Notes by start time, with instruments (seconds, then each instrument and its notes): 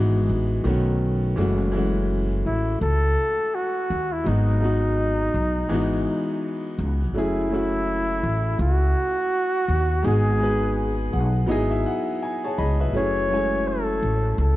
Already playing: upright bass G#1, upright piano E3 G#3 B3 D#4 F#4, flugelhorn F#4
0.29 upright bass A1
0.64 upright bass B1, upright piano D#3 A3 B3 C#4
0.69 upright piano F#4
1.36 upright bass F#1, upright piano E3 G#3 A3 C#4
1.41 upright piano F#4
1.72 upright piano E3 G#3 A3 C#4
1.77 upright piano F#4
2.46 upright bass A1, flugelhorn E4
2.81 upright bass C#2, flugelhorn A4
3.55 flugelhorn F#4
3.90 upright bass D#2
4.12 flugelhorn E4
4.24 upright bass G#1, upright piano F#3 G#3 B3 D#4, flugelhorn D#4
4.29 upright piano F#4
4.60 upright piano F#3 G#3 B3 D#4
4.65 upright piano F#4
5.34 upright bass B1
5.69 upright bass G#1, upright piano E3 G#3 B3 D#4
5.74 upright piano F#4
6.79 upright bass C#2
7.14 upright bass F#1, upright piano F#3 A3 C#4 E4, flugelhorn E4
7.18 upright piano G#4
7.50 upright piano F#3 A3 C#4 E4
7.55 upright piano F#4
8.23 upright bass A1
8.59 upright bass C#2, flugelhorn F#4
9.68 upright bass D#2
10.03 upright bass G#1, upright piano G#3 B3 D#4 F#4, flugelhorn G#4
10.08 upright piano G#4
10.38 upright piano G#3 B3 D#4 F#4
10.43 upright piano B4
11.13 upright bass B1, upright piano F#5
11.46 upright bass G#1, upright piano F#3 B3 D#4 E4 D#5
11.51 upright piano G#4
11.71 upright piano E5
11.86 upright piano F#5
12.23 upright piano G#5
12.44 upright piano G#4 C#5 A5
12.58 upright bass C#2, upright piano G#4 D#5 B5
12.80 upright piano B4 E5
12.93 upright bass F#1, upright piano F#3 A3 C#4 E4, flugelhorn C#5
12.98 upright piano G#4
13.29 upright piano F#3 G#3 C#4 E4
13.33 upright piano A3 G#5
13.68 flugelhorn A4
14.03 upright bass A1
14.38 upright bass C#2, flugelhorn A4